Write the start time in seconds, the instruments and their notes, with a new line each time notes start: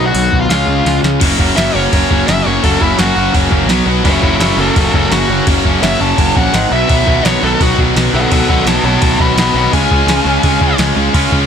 Already playing: overdriven electric guitar B2 D#3 F#3 B3 F#4
0.06 lead electric guitar F#4 F#5
0.14 picked electric bass B1, open hi-hat
0.32 picked electric bass B1, kick
0.41 lead electric guitar F4 F5
0.49 picked electric bass C#2, overdriven electric guitar C#3 G#3 C#4 F4, lead electric guitar F4 F5, snare, open hi-hat
0.66 picked electric bass C#2
0.85 picked electric bass C#2, snare, open hi-hat
1.03 picked electric bass C#2, snare
1.21 picked electric bass F#1, overdriven electric guitar F#2 C#3 F#3 A#3 C#4 F#4, kick, crash
1.38 picked electric bass F#1, overdriven electric guitar F#2 C#3 F#3 A#3 C#4 F#4, kick
1.56 picked electric bass F#1, overdriven electric guitar F#2 C#3 F#3 A#3 C#4 F#4, lead electric guitar E5, snare, crash
1.74 picked electric bass F#1, overdriven electric guitar F#2 C#3 F#3 A#3 C#4 F#4, lead electric guitar C#5
1.92 picked electric bass F#1, overdriven electric guitar F#2 C#3 F#3 A#3 C#4 F#4, kick, crash
2.10 picked electric bass F#1, overdriven electric guitar F#2 C#3 F#3 A#3 C#4 F#4, kick
2.27 picked electric bass F#1, overdriven electric guitar F#2 C#3 F#3 A#3 C#4 F#4, lead electric guitar E5, snare, crash
2.45 picked electric bass F#1, overdriven electric guitar F#2 C#3 F#3 A#3 C#4 F#4, lead electric guitar C#5
2.63 picked electric bass F#1, overdriven electric guitar F#2 C#3 F#3 A#3 C#4 F#4, lead electric guitar A4, kick, crash
2.81 picked electric bass F#1, overdriven electric guitar F#2 C#3 F#3 A#3 C#4 F#4, lead electric guitar E4, kick
2.98 picked electric bass F#1, overdriven electric guitar F#2 C#3 F#3 A#3 C#4 F#4, lead electric guitar F#4, snare, crash
3.15 picked electric bass F#1, overdriven electric guitar F#2 C#3 F#3 A#3 C#4 F#4
3.33 picked electric bass F#1, overdriven electric guitar F#2 C#3 F#3 A#3 C#4 F#4, kick, crash
3.51 picked electric bass F#1, overdriven electric guitar F#2 C#3 F#3 A#3 C#4 F#4, kick
3.68 picked electric bass B1, overdriven electric guitar B2 F#3 B3 F#4, snare, crash
3.86 picked electric bass B1, overdriven electric guitar B2 F#3 B3 F#4
4.04 picked electric bass F#1, overdriven electric guitar F#2 C#3 F#3 A#3 C#4 F#4, lead electric guitar E4 C#5, kick, crash
4.21 picked electric bass F#1, overdriven electric guitar F#2 C#3 F#3 A#3 C#4 F#4, lead electric guitar E4 C#5, kick
4.39 picked electric bass F#1, overdriven electric guitar F#2 C#3 F#3 A#3 C#4 F#4, lead electric guitar E4 C#5, snare, crash
4.57 picked electric bass F#1, overdriven electric guitar F#2 C#3 F#3 A#3 C#4 F#4, lead electric guitar C#4 A4
4.76 picked electric bass F#1, overdriven electric guitar F#2 C#3 F#3 A#3 C#4 F#4, lead electric guitar C#4 A4, kick, crash
4.93 picked electric bass F#1, overdriven electric guitar F#2 C#3 F#3 A#3 C#4 F#4, lead electric guitar C#4 A4, kick
5.10 picked electric bass F#1, overdriven electric guitar F#2 C#3 F#3 A#3 C#4 F#4, lead electric guitar F#4, snare, crash
5.27 picked electric bass F#1, overdriven electric guitar F#2 C#3 F#3 A#3 C#4
5.32 overdriven electric guitar F#4
5.47 picked electric bass F#1, overdriven electric guitar F#2 C#3 F#3 A#3 C#4 F#4, kick, crash
5.65 picked electric bass F#1, overdriven electric guitar F#2 C#3 F#3 A#3 C#4 F#4, kick
5.82 picked electric bass F#1, overdriven electric guitar F#2 C#3 F#3 A#3 C#4 F#4, lead electric guitar E5, snare, crash
6.00 picked electric bass F#1, overdriven electric guitar F#2 C#3 F#3 A#3 C#4 F#4, lead electric guitar A5
6.18 picked electric bass F#1, overdriven electric guitar F#2 C#3 F#3 A#3 C#4 F#4, kick, crash
6.36 picked electric bass A#1, overdriven electric guitar F#2 C#3 F#3 A#3 C#4 F#4, lead electric guitar F#5, kick
6.53 picked electric bass G#1, overdriven electric guitar G#2 D#3 G#3 D#4, snare, crash
6.71 picked electric bass B1, overdriven electric guitar B2 F#3 B3 F#4, lead electric guitar E5
6.89 picked electric bass B1, overdriven electric guitar B2 D#3 F#3 B3 F#4, kick, crash
7.07 picked electric bass B1, overdriven electric guitar B2 D#3 F#3 B3 F#4, kick
7.24 picked electric bass B1, overdriven electric guitar B2 D#3 F#3 B3 F#4, lead electric guitar C#5, snare, crash
7.43 picked electric bass B1, overdriven electric guitar B2 D#3 F#3 B3 F#4, lead electric guitar A4
7.60 picked electric bass B1, overdriven electric guitar B2 D#3 F#3 B3 F#4, lead electric guitar F#4, kick, crash
7.78 picked electric bass B1, overdriven electric guitar B2 D#3 F#3 B3 F#4, kick
7.95 picked electric bass B1, overdriven electric guitar B2 D#3 F#3 B3 F#4, snare, crash
8.13 picked electric bass B1, overdriven electric guitar B2 D#3 F#3 B3 F#4, lead electric guitar A4 F#5
8.31 picked electric bass B1, overdriven electric guitar B2 D#3 F#3 B3 F#4, lead electric guitar A4 F#5, kick, crash
8.49 picked electric bass B1, overdriven electric guitar B2 D#3 F#3 B3 F#4, lead electric guitar A4 F#5, kick
8.66 picked electric bass B1, overdriven electric guitar B2 D#3 F#3 B3 F#4, lead electric guitar C#5 A5, snare, crash
8.83 picked electric bass B1, overdriven electric guitar B2 D#3 F#3 B3 F#4, lead electric guitar C#5 A5
9.01 picked electric bass B1, overdriven electric guitar B2 D#3 F#3 B3 F#4, lead electric guitar C#5 A5, kick, crash
9.20 picked electric bass B1, overdriven electric guitar B2 D#3 F#3 B3 F#4, lead electric guitar D#5 B5, kick
9.36 picked electric bass B1, overdriven electric guitar B2 D#3 F#3 B3 F#4, lead electric guitar D#5 B5, snare, crash
9.54 picked electric bass B1, overdriven electric guitar B2 D#3 F#3 B3 F#4, lead electric guitar D#5 B5
9.73 picked electric bass C#2, overdriven electric guitar C#3 G#3 C#4 F4, lead electric guitar G#5, kick, crash
9.91 picked electric bass C#2, overdriven electric guitar C#3 G#3 C#4 F4, kick
10.06 picked electric bass C#2, overdriven electric guitar C#3 G#3 C#4 F4, snare, crash
10.25 picked electric bass C#2, overdriven electric guitar C#3 G#3 C#4 F4
10.43 picked electric bass C#2, overdriven electric guitar C#3 G#3 C#4 F4, kick, crash
10.61 picked electric bass C#2, overdriven electric guitar C#3 G#3 C#4 F4, kick
10.78 picked electric bass C#2, overdriven electric guitar C#3 G#3 C#4 F4, snare, crash
10.96 picked electric bass C#2, overdriven electric guitar C#3 G#3 C#4 F4
11.14 picked electric bass C#2, overdriven electric guitar C#3 G#3 C#4 F4, kick, crash
11.32 picked electric bass C#2, overdriven electric guitar C#3 G#3 C#4 F4, kick